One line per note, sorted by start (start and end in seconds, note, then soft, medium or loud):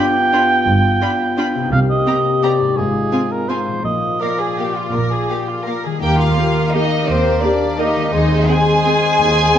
0.00 1.65 G2 soft
0.00 1.67 B3 soft
0.00 1.68 B3 medium
0.00 1.68 F4 medium
0.00 1.69 F4 soft
0.00 1.67 G4 soft
0.00 1.72 G5 medium
0.33 0.41 D4 medium
0.33 0.41 F4 medium
0.33 0.42 B5 soft
0.67 0.94 G1 medium
0.67 0.94 G2 medium
1.01 1.10 D4 soft
1.01 1.09 F4 soft
1.01 1.10 B5 soft
1.37 1.45 D4 soft
1.37 1.46 F4 medium
1.37 1.47 B5 soft
1.55 2.70 C3 soft
1.59 2.72 A#3 soft
1.64 2.68 D#4 soft
1.68 2.77 G4 soft
1.68 1.80 F5 medium
1.72 1.99 C2 medium
1.72 2.00 C3 medium
1.72 2.74 A#3 medium
1.72 2.74 G4 medium
1.90 2.45 D#5 medium
2.07 2.15 C4 soft
2.07 2.15 G4 soft
2.07 2.15 A#5 soft
2.43 2.51 C4 soft
2.43 2.51 G4 soft
2.43 2.79 D5 medium
2.43 2.51 A#5 soft
2.60 3.77 G#2 soft
2.64 3.80 G#3 soft
2.69 3.82 D#4 soft
2.73 3.79 F4 soft
2.73 3.48 F4 soft
2.73 3.33 G#4 medium
2.77 3.05 G#1 medium
2.77 3.05 G#2 medium
2.77 3.48 G#3 soft
3.12 3.20 C4 soft
3.12 3.20 F4 soft
3.12 3.21 G#5 soft
3.32 3.51 A#4 medium
3.49 3.84 G#3 soft
3.49 3.57 C4 soft
3.49 3.57 F4 soft
3.49 3.83 F4 soft
3.49 3.84 C5 medium
3.49 3.58 G#5 soft
3.67 5.95 A#2 soft
3.72 5.98 F3 soft
3.76 5.93 A#3 soft
3.81 6.02 F4 soft
3.81 4.20 F4 soft
3.85 4.14 A#1 medium
3.85 4.14 A#2 soft
3.85 4.20 A#3 soft
3.85 4.23 D#5 medium
4.21 5.82 A#3 soft
4.21 4.30 A#3 soft
4.21 5.82 F4 soft
4.21 4.39 A#4 soft
4.21 5.86 D5 soft
4.21 4.29 F5 soft
4.40 4.59 G#4 soft
4.58 4.67 A#3 soft
4.58 4.77 G4 soft
4.58 4.67 F5 soft
4.77 4.94 F4 soft
4.94 5.22 A#1 soft
4.94 5.23 A#2 soft
4.94 5.12 A#4 medium
5.12 5.30 G#4 soft
5.30 5.38 A#3 soft
5.30 5.49 G4 soft
5.30 5.38 F5 soft
5.48 5.67 F4 soft
5.66 5.75 A#3 soft
5.66 5.85 A#4 medium
5.66 5.75 F5 soft
5.85 7.94 D#3 soft
5.85 6.03 G#4 soft
5.90 8.08 G3 soft
5.94 8.10 A#3 soft
5.99 8.07 D#4 soft
5.99 6.18 G4 medium
5.99 6.18 G5 medium
5.99 6.21 G5 medium
6.03 6.32 D#2 medium
6.03 6.70 A#3 medium
6.03 6.70 G4 medium
6.03 6.70 A#4 soft
6.19 6.74 F4 medium
6.19 6.65 F5 medium
6.19 6.76 F5 medium
6.37 6.45 A#3 soft
6.37 6.51 A#3 soft
6.37 6.45 G4 soft
6.37 6.51 G4 soft
6.66 6.74 F5 soft
6.73 6.82 A#3 soft
6.73 6.87 A#3 soft
6.73 7.77 A#3 medium
6.73 7.08 D#4 medium
6.73 7.77 G4 soft
6.73 6.82 G4 soft
6.73 6.87 G4 soft
6.73 7.77 A#4 soft
6.73 7.08 D#5 medium
7.08 7.37 D#2 medium
7.08 7.42 C4 medium
7.08 7.42 C5 medium
7.41 7.56 A#3 soft
7.41 7.51 A#3 soft
7.41 7.79 D4 soft
7.41 7.56 G4 soft
7.41 7.51 G4 soft
7.41 7.78 D5 medium
7.41 7.81 D5 soft
7.78 7.86 A#3 soft
7.78 8.15 A#3 soft
7.78 7.92 A#3 soft
7.78 8.11 D#4 medium
7.78 7.87 G4 soft
7.78 8.13 G4 soft
7.78 7.92 G4 soft
7.78 8.14 A#4 soft
7.78 8.10 D#5 medium
7.78 8.12 D#5 medium
7.95 9.59 D#3 soft
8.00 9.59 G#3 soft
8.04 9.59 C4 soft
8.09 9.59 D#4 soft
8.09 8.48 D#4 medium
8.09 8.48 D#5 medium
8.13 8.43 D#2 medium
8.13 8.49 G#3 medium
8.13 8.49 G#4 soft
8.13 8.48 C5 soft
8.13 8.50 D#5 medium
8.49 9.59 G#3 medium
8.49 8.57 C4 soft
8.49 8.63 C4 soft
8.49 9.59 G#4 medium
8.49 8.57 G#4 soft
8.49 8.62 G#4 soft
8.49 9.59 G#4 medium
8.49 9.59 C5 medium
8.49 9.59 G#5 medium
8.86 8.94 C4 soft
8.86 8.99 C4 soft
8.86 8.94 G#4 soft
8.86 8.99 G#4 soft
9.20 9.48 D#2 medium
9.54 9.59 C4 soft
9.54 9.59 G#4 soft